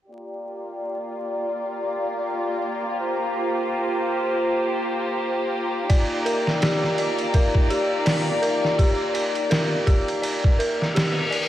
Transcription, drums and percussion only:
5.90 kick, ride
6.26 ride
6.47 snare
6.62 snare, ride
6.84 snare
6.98 ride
7.19 ride
7.34 kick, ride
7.55 kick
7.70 ride
8.06 snare, open hi-hat
8.43 ride
8.64 snare
8.79 kick, ride
9.15 ride
9.35 ride
9.51 snare, ride
9.87 kick, ride
10.08 ride
10.23 ride
10.44 kick
10.60 ride
10.82 snare
10.96 snare, ride
11.32 ride

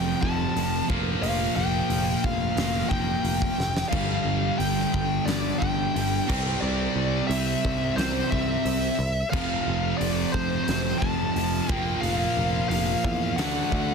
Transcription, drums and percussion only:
0.23 kick
0.57 open hi-hat
0.90 kick
1.23 open hi-hat
1.90 open hi-hat
2.24 kick
2.57 snare, open hi-hat
2.91 kick
3.25 open hi-hat
3.42 kick
3.60 snare
3.77 snare
3.93 kick, crash
4.60 open hi-hat
4.79 snare
4.94 kick
5.28 snare, open hi-hat
5.62 kick
5.96 open hi-hat
6.30 kick, crash
7.31 open hi-hat
7.65 kick
7.98 snare, open hi-hat
8.32 kick
8.66 open hi-hat
9.33 kick, crash
10.01 open hi-hat
10.34 kick
10.68 snare, open hi-hat
11.02 kick
11.36 open hi-hat
11.70 kick
12.03 open hi-hat
12.71 open hi-hat
13.05 kick
13.38 snare, open hi-hat
13.72 kick

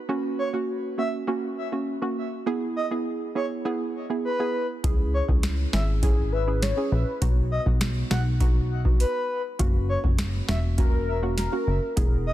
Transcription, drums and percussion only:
4.84 kick, closed hi-hat
5.29 kick
5.43 snare, closed hi-hat
5.73 snare
6.03 kick, closed hi-hat
6.62 snare, closed hi-hat
7.22 kick, closed hi-hat
7.66 kick
7.81 snare, closed hi-hat
8.11 snare
8.41 kick, closed hi-hat
8.85 kick
9.00 closed hi-hat
9.59 kick, closed hi-hat
10.04 kick
10.18 snare, closed hi-hat
10.49 snare
10.78 kick, closed hi-hat
11.38 snare, closed hi-hat
11.97 kick, closed hi-hat

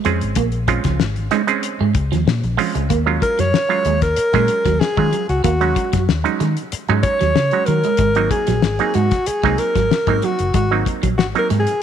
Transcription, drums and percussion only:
0.05 closed hi-hat
0.21 closed hi-hat
0.35 kick, closed hi-hat
0.52 closed hi-hat
0.68 kick, closed hi-hat
0.84 kick, snare, closed hi-hat
1.00 snare
1.16 closed hi-hat
1.31 snare, closed hi-hat
1.48 closed hi-hat
1.63 closed hi-hat
1.95 kick, closed hi-hat
2.13 snare, closed hi-hat
2.28 snare
2.44 closed hi-hat
2.59 open hi-hat
2.75 closed hi-hat
2.90 kick, closed hi-hat
3.22 kick, closed hi-hat
3.39 snare, closed hi-hat
3.54 snare
3.71 closed hi-hat
3.85 closed hi-hat
4.02 kick, snare, closed hi-hat
4.16 closed hi-hat
4.33 kick, snare, closed hi-hat
4.48 closed hi-hat
4.66 kick, snare, closed hi-hat
4.81 snare
4.97 kick
5.13 closed hi-hat
5.29 closed hi-hat
5.44 kick, closed hi-hat
5.61 closed hi-hat
5.76 kick, closed hi-hat
5.93 kick, snare, closed hi-hat
6.09 snare
6.25 closed hi-hat
6.40 snare, closed hi-hat
6.57 closed hi-hat
6.72 closed hi-hat
6.88 closed hi-hat
7.03 kick, closed hi-hat
7.21 snare, closed hi-hat
7.36 snare
7.51 closed hi-hat
7.66 closed hi-hat
7.84 closed hi-hat
7.97 kick, closed hi-hat
8.15 closed hi-hat
8.31 kick, closed hi-hat
8.47 snare, closed hi-hat
8.62 snare
8.79 closed hi-hat
8.94 closed hi-hat
9.11 kick, snare, closed hi-hat
9.26 closed hi-hat
9.43 kick, snare
9.58 closed hi-hat
9.76 kick, snare, closed hi-hat
9.91 snare
10.07 kick, closed hi-hat
10.22 closed hi-hat
10.39 closed hi-hat
10.54 kick, closed hi-hat
10.86 kick, closed hi-hat
11.03 kick, closed hi-hat
11.19 snare
11.35 closed hi-hat
11.50 snare, closed hi-hat
11.67 closed hi-hat

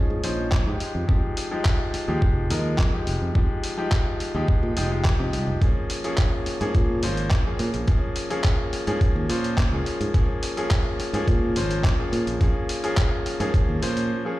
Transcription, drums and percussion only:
0.24 open hi-hat
0.52 kick, clap
0.80 open hi-hat
1.09 kick
1.37 open hi-hat
1.65 kick, clap
1.94 open hi-hat
2.22 kick
2.50 open hi-hat
2.78 kick, clap
3.07 open hi-hat
3.35 kick
3.64 open hi-hat
3.92 kick, clap
4.20 open hi-hat
4.48 kick
4.77 open hi-hat
5.05 kick, clap
5.33 open hi-hat
5.62 kick, closed hi-hat
5.90 open hi-hat
6.04 closed hi-hat
6.18 kick, clap, closed hi-hat
6.46 open hi-hat
6.61 closed hi-hat
6.75 kick, closed hi-hat
7.03 open hi-hat
7.17 closed hi-hat
7.31 kick, clap, closed hi-hat
7.59 open hi-hat
7.74 closed hi-hat
7.88 kick, closed hi-hat
8.16 open hi-hat
8.31 closed hi-hat
8.44 kick, clap, closed hi-hat
8.73 open hi-hat
8.87 closed hi-hat
9.01 kick, closed hi-hat
9.30 open hi-hat
9.44 closed hi-hat
9.58 kick, clap, closed hi-hat
9.86 open hi-hat
10.01 closed hi-hat
10.14 kick, closed hi-hat
10.43 open hi-hat
10.57 closed hi-hat
10.71 kick, clap, closed hi-hat
11.00 open hi-hat
11.14 closed hi-hat
11.28 kick, closed hi-hat
11.56 open hi-hat
11.71 closed hi-hat
11.84 kick, clap, closed hi-hat
12.13 open hi-hat
12.27 closed hi-hat
12.41 kick, closed hi-hat
12.69 open hi-hat
12.84 closed hi-hat
12.97 kick, clap, closed hi-hat
13.26 open hi-hat
13.40 closed hi-hat
13.54 kick, closed hi-hat
13.83 open hi-hat
13.97 closed hi-hat

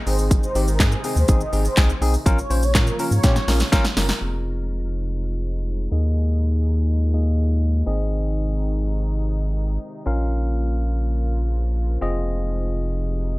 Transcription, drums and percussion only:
0.07 open hi-hat, shaker
0.19 shaker
0.31 kick, closed hi-hat, shaker
0.43 shaker
0.55 open hi-hat, shaker
0.68 shaker
0.80 kick, snare, clap, closed hi-hat, shaker
0.92 shaker
1.04 open hi-hat, shaker
1.16 shaker
1.28 kick, closed hi-hat, shaker
1.41 shaker
1.53 open hi-hat, shaker
1.65 shaker
1.77 kick, snare, clap, closed hi-hat, shaker
1.89 shaker
2.02 open hi-hat, shaker
2.14 shaker
2.26 kick, closed hi-hat, shaker
2.38 shaker
2.51 open hi-hat, shaker
2.63 shaker
2.75 kick, snare, clap, closed hi-hat, shaker
2.87 shaker
2.99 open hi-hat, shaker
3.12 shaker
3.23 kick, snare, closed hi-hat, shaker
3.36 snare, shaker
3.48 snare, open hi-hat, shaker
3.60 snare, shaker
3.72 kick, snare, closed hi-hat, shaker
3.85 snare, shaker
3.97 snare, open hi-hat, shaker
4.09 snare, shaker

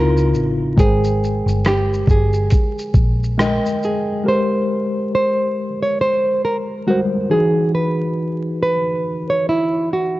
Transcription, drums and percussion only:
0.17 shaker
0.34 shaker
0.78 kick, closed hi-hat, shaker
1.04 shaker
1.24 shaker
1.48 shaker
1.65 cross-stick, closed hi-hat, shaker
1.93 shaker
2.07 kick, shaker
2.33 shaker
2.50 kick, closed hi-hat, shaker
2.78 shaker
2.94 kick, shaker
3.23 shaker
3.39 cross-stick, closed hi-hat, shaker
3.65 shaker
3.83 shaker

